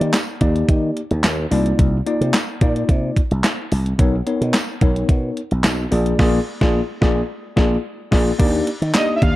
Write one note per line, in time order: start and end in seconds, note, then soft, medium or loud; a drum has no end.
0.00 0.11 D#3 medium
0.00 0.15 A#3 medium
0.00 0.15 D#4 medium
0.00 0.16 G4 medium
0.00 0.16 D5 loud
0.00 closed hi-hat medium
0.14 snare loud
0.14 clap medium
0.14 closed hi-hat medium
0.14 tambourine medium
0.41 0.62 D#2 medium
0.41 1.00 A#3 medium
0.41 1.00 D#4 medium
0.41 1.00 G4 medium
0.41 1.00 D5 medium
0.41 kick medium
0.41 closed hi-hat medium
0.56 closed hi-hat soft
0.69 0.90 D#3 loud
0.69 kick loud
0.69 closed hi-hat medium
0.97 closed hi-hat medium
1.11 1.21 D#2 medium
1.11 closed hi-hat soft
1.24 1.45 D#2 medium
1.24 snare loud
1.24 clap medium
1.24 closed hi-hat medium
1.24 tambourine medium
1.51 1.72 C2 loud
1.51 1.96 A#3 medium
1.51 1.96 D#4 medium
1.51 1.96 F4 medium
1.51 1.96 D5 medium
1.51 open hi-hat medium
1.66 closed hi-hat soft
1.79 2.00 C2 medium
1.79 kick loud
1.79 closed hi-hat loud
2.06 2.36 A#3 medium
2.06 2.36 D#4 medium
2.06 2.36 F4 medium
2.06 2.36 D5 loud
2.06 closed hi-hat medium
2.21 2.31 C3 medium
2.21 closed hi-hat medium
2.34 snare loud
2.34 clap medium
2.34 closed hi-hat medium
2.34 tambourine medium
2.61 2.82 A#2 medium
2.61 3.20 A#3 medium
2.61 3.20 D#4 medium
2.61 3.20 F4 medium
2.61 3.20 D5 loud
2.61 kick medium
2.61 closed hi-hat medium
2.76 closed hi-hat soft
2.89 3.10 C3 loud
2.89 kick loud
2.89 closed hi-hat medium
3.16 kick medium
3.16 closed hi-hat medium
3.31 3.41 C2 medium
3.31 closed hi-hat soft
3.44 snare loud
3.44 clap medium
3.44 closed hi-hat medium
3.44 tambourine medium
3.72 3.93 C2 medium
3.72 open hi-hat medium
3.86 closed hi-hat soft
3.99 4.20 B1 loud
3.99 4.14 B3 medium
3.99 4.14 D#4 medium
3.99 4.14 A#4 medium
3.99 4.15 C#5 loud
3.99 kick loud
3.99 closed hi-hat loud
4.26 4.56 B3 medium
4.26 4.56 D#4 medium
4.26 4.56 A#4 medium
4.26 4.56 C#5 medium
4.26 closed hi-hat medium
4.41 4.51 B2 medium
4.41 closed hi-hat medium
4.54 snare loud
4.54 clap medium
4.54 closed hi-hat medium
4.54 tambourine medium
4.81 5.02 B1 medium
4.81 5.40 B3 medium
4.81 5.40 D#4 medium
4.81 5.40 A#4 medium
4.81 5.40 C#5 medium
4.81 kick medium
4.81 closed hi-hat medium
4.96 closed hi-hat soft
5.09 5.30 B2 loud
5.09 kick loud
5.09 closed hi-hat medium
5.37 closed hi-hat medium
5.51 5.61 B1 medium
5.51 closed hi-hat soft
5.64 5.85 B1 medium
5.64 snare loud
5.64 clap medium
5.64 closed hi-hat medium
5.64 tambourine medium
5.91 6.13 A#1 loud
5.91 6.18 A#3 medium
5.91 6.18 F4 medium
5.91 6.18 G#4 medium
5.91 6.19 D5 medium
5.91 open hi-hat medium
6.06 closed hi-hat soft
6.19 6.38 A#1 loud
6.19 6.38 A#3 loud
6.19 6.38 F4 loud
6.19 6.38 G#4 loud
6.19 6.39 D5 loud
6.19 kick loud
6.19 snare loud
6.19 crash medium
6.61 6.80 A#1 medium
6.61 6.80 A#3 medium
6.61 6.80 F4 loud
6.61 6.80 G#4 loud
6.61 6.80 D5 medium
6.61 kick loud
6.61 snare loud
7.01 7.21 A#1 loud
7.01 7.21 A#3 loud
7.01 7.21 F4 loud
7.01 7.21 G#4 loud
7.01 7.21 D5 loud
7.01 kick loud
7.01 snare loud
7.56 7.76 A#1 loud
7.56 7.76 A#3 loud
7.56 7.76 F4 loud
7.56 7.76 G#4 loud
7.56 7.76 D5 medium
7.56 kick loud
7.56 snare loud
8.11 8.31 A#1 loud
8.11 8.31 A#3 medium
8.11 8.31 F4 loud
8.11 8.31 G#4 loud
8.11 8.31 D5 loud
8.11 kick loud
8.11 snare loud
8.11 crash medium
8.39 8.60 D#2 loud
8.39 8.68 A#3 loud
8.39 8.68 D4 medium
8.39 8.69 D#4 medium
8.39 8.69 G4 medium
8.39 8.69 D5 loud
8.39 kick loud
8.39 closed hi-hat loud
8.39 crash loud
8.67 closed hi-hat medium
8.82 8.91 D#3 loud
8.82 closed hi-hat medium
8.94 9.36 A#3 medium
8.94 9.36 D4 medium
8.94 9.36 D#4 medium
8.94 9.36 G4 medium
8.94 9.36 D5 medium
8.94 9.15 D#5 medium
8.94 snare loud
8.94 clap loud
8.94 closed hi-hat medium
8.94 tambourine medium
9.16 9.24 E5 medium
9.22 9.36 D#2 loud
9.22 9.36 F5 loud
9.22 kick loud
9.22 closed hi-hat medium